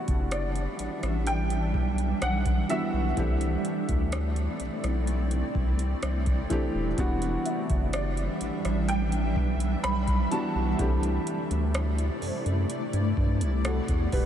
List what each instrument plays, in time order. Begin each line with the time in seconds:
Already playing: felt piano E3 G3 B3 D4 F#4, ambient pad E3 G3 D4 E5, celesta F#5 A5
0.08 sub bass F#1, kick, closed hi-hat
0.31 grand piano D5, cross-stick, closed hi-hat
0.56 closed hi-hat
0.79 sub bass A1, closed hi-hat
1.03 sub bass A1, cross-stick, closed hi-hat
1.27 grand piano G5, closed hi-hat
1.50 closed hi-hat
1.74 sub bass B1, kick
1.98 closed hi-hat
2.22 sub bass B1, grand piano F#5, cross-stick, closed hi-hat
2.46 kick, closed hi-hat
2.69 felt piano E3 G3 B3 D4 F#4, grand piano E5, closed hi-hat
2.93 sub bass B1
3.16 sub bass C2, felt piano E3 A3 C4 D4 G4, ambient pad A3 C4 E4 D5, kick, closed hi-hat
3.41 closed hi-hat
3.65 closed hi-hat
3.89 sub bass D2, kick, closed hi-hat
4.12 cross-stick, closed hi-hat
4.36 closed hi-hat
4.60 sub bass B1, closed hi-hat
4.84 sub bass B1, cross-stick, closed hi-hat
5.07 closed hi-hat
5.31 closed hi-hat
5.55 sub bass C2, kick
5.79 closed hi-hat
6.03 sub bass C2, cross-stick, closed hi-hat
6.26 kick, closed hi-hat
6.50 felt piano E3 A3 C4 D4 G4, kick, closed hi-hat
6.74 sub bass D#1
6.97 sub bass E1, felt piano E3 G3 B3 D4 F#4, ambient pad E3 G3 D4 E5, kick, closed hi-hat
7.22 closed hi-hat
7.46 celesta E5, closed hi-hat
7.70 sub bass F#1, kick, closed hi-hat
7.93 grand piano D5, cross-stick, closed hi-hat
8.17 closed hi-hat
8.41 sub bass A1, closed hi-hat
8.65 sub bass A1, cross-stick, closed hi-hat
8.89 grand piano G5, closed hi-hat
9.12 closed hi-hat
9.36 sub bass B1, kick
9.60 closed hi-hat
9.84 sub bass B1, grand piano B5, cross-stick, closed hi-hat
10.08 kick, closed hi-hat
10.31 felt piano E3 G3 B3 D4 F#4, celesta F#5, grand piano A5, closed hi-hat
10.55 sub bass B1
10.60 celesta A5
10.78 sub bass C2, ambient pad C3 A3 E4 D5, felt piano E3 A3 C4 D4 G4, kick, closed hi-hat
11.03 closed hi-hat
11.27 closed hi-hat
11.51 sub bass D2, closed hi-hat
11.74 cross-stick, closed hi-hat
11.98 closed hi-hat
12.22 sub bass F#2, celesta C5, open hi-hat
12.46 sub bass F#2, closed hi-hat
12.70 closed hi-hat
12.93 sub bass G2, closed hi-hat
13.17 sub bass G2, kick
13.41 sub bass C2, closed hi-hat
13.65 felt piano F#4 A4, cross-stick, closed hi-hat
13.88 sub bass E2, kick, closed hi-hat
14.12 sub bass D#1, felt piano G4 B4, kick, open hi-hat